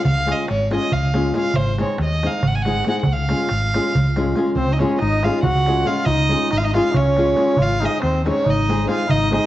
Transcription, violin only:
0.06 F5
0.32 D#5
0.51 C#5
0.75 D#5
0.93 F5
1.39 F5
1.56 C5
1.82 C#5
2.05 D#5
2.27 F5
2.47 F#5
2.55 G#5
2.62 F#5
2.90 F#5
3.02 F#5
3.12 F5
4.56 C5
4.73 D#5
4.80 C#5
5.00 D#5
5.24 F5
5.44 F#5
5.87 F5
6.05 D#5
6.53 D#5
6.57 F5
6.65 D#5
6.77 F5
6.97 C#5
7.62 F5
7.85 D#5
8.03 C5
8.28 C#5
8.50 D#5
8.91 F5
9.10 D#5
9.35 D#5

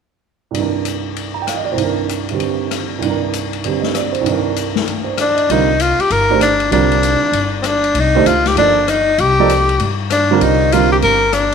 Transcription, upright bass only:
5.49 C2
5.99 muted upright bass stroke
6.10 G1
6.71 C2
7.21 muted upright bass stroke
7.32 G1
7.94 C2
8.25 C#2
8.56 G1
9.18 C2
9.80 G2
10.40 C2
11.02 G1

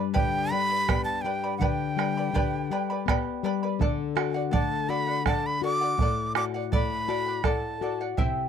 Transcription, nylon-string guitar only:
Already playing: G2 G3
0.15 D3
0.52 G3
0.89 B3
1.25 G3
1.59 D3
1.96 G3
2.33 D3
2.70 G3
3.06 B3
3.43 G3
3.79 D3
4.16 F#4
4.52 A3
4.89 F#4
5.26 A4
5.62 F#4
5.98 A2
6.36 F#4
6.72 A3
7.09 F#4
7.44 A4
7.81 F#4
8.18 C3

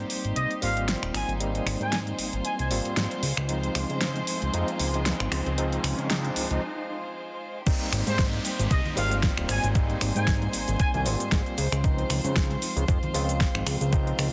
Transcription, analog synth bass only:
0.24 G#1
0.36 C2
0.62 G#1
1.03 D#1
1.14 G#1
1.28 G#1
1.66 G#1
1.80 G#2
2.18 G#1
2.33 G#1
2.59 C2
2.70 G#1
2.85 G#2
2.97 G#2
3.23 C#2
3.37 C#2
3.75 C#2
3.90 C#3
4.42 C#2
4.54 F2
4.79 C#2
5.20 G#1
5.32 C#2
5.46 C#2
5.83 C#2
5.98 C#3
6.36 C#2
6.51 C#2
7.93 G#1
8.07 G#2
8.59 G#1
8.71 C2
8.97 G#1
9.38 D#1
9.49 G#1
9.64 G#1
10.02 G#1
10.16 G#2
10.54 G#1
10.68 G#1
10.94 C2
11.06 G#1
11.20 G#2
11.32 G#2
11.58 C#2
11.72 C#2
12.10 C#2
12.24 C#3
12.76 C#2
12.88 F2
13.14 C#2
13.55 G#1
13.66 C#2
13.81 C#2
14.19 C#2

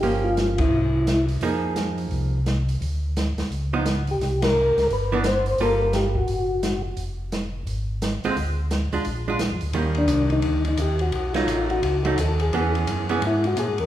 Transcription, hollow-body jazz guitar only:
0.03 F3 A#3 C#4
1.43 F3 A#3 D#4 G#4
3.73 F3 B3 D#4
5.12 E3 B3 D4
5.61 G3 A#3 F4 A4
8.25 D3 G#3 C4 F4
8.93 G#3 D4 F4
9.28 G#3 D4 F4
9.74 D#3 G3 A#3
11.35 F#3 A3 D#4
12.05 F#3 A3 D#4
12.54 E3 B3 C#4 G#4
13.10 E3 B3 C#4 G#4

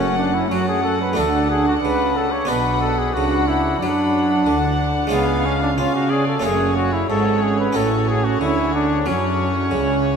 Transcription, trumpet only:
Already playing: C#4
0.17 D4
0.34 E4
0.50 F#4
0.68 G#4
0.83 A4
1.02 B4
1.18 A4
1.50 G#4
1.67 F#4
1.83 B4
2.17 A4
2.32 C#5
2.48 B4
2.81 A4
2.98 G#4
3.14 F#4
3.48 E4
3.80 D4
5.13 B3
5.46 C#4
5.62 D4
5.78 F4
5.95 F#4
6.10 G#4
6.27 A4
6.44 G#4
6.77 F#4
6.93 E4
7.09 A4
7.42 G#4
7.60 B4
7.76 A4
8.09 G#4
8.24 F#4
8.41 E4
8.74 D4
9.07 C#4

